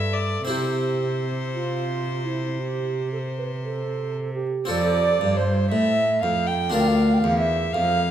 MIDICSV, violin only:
0, 0, Header, 1, 2, 480
1, 0, Start_track
1, 0, Key_signature, 0, "major"
1, 0, Tempo, 1052632
1, 222, Time_signature, 4, 2, 24, 8
1, 2141, Key_signature, -1, "major"
1, 2142, Tempo, 1013514
1, 3757, End_track
2, 0, Start_track
2, 0, Title_t, "Violin"
2, 0, Program_c, 0, 40
2, 0, Note_on_c, 0, 76, 77
2, 60, Note_on_c, 0, 74, 67
2, 67, Note_off_c, 0, 76, 0
2, 215, Note_off_c, 0, 74, 0
2, 218, Note_on_c, 0, 72, 68
2, 1885, Note_off_c, 0, 72, 0
2, 2132, Note_on_c, 0, 74, 69
2, 2460, Note_on_c, 0, 72, 60
2, 2467, Note_off_c, 0, 74, 0
2, 2617, Note_off_c, 0, 72, 0
2, 2620, Note_on_c, 0, 76, 72
2, 2857, Note_off_c, 0, 76, 0
2, 2861, Note_on_c, 0, 77, 58
2, 2981, Note_on_c, 0, 79, 62
2, 2988, Note_off_c, 0, 77, 0
2, 3103, Note_off_c, 0, 79, 0
2, 3105, Note_on_c, 0, 77, 61
2, 3418, Note_off_c, 0, 77, 0
2, 3420, Note_on_c, 0, 76, 63
2, 3576, Note_on_c, 0, 77, 73
2, 3583, Note_off_c, 0, 76, 0
2, 3757, Note_off_c, 0, 77, 0
2, 3757, End_track
0, 0, End_of_file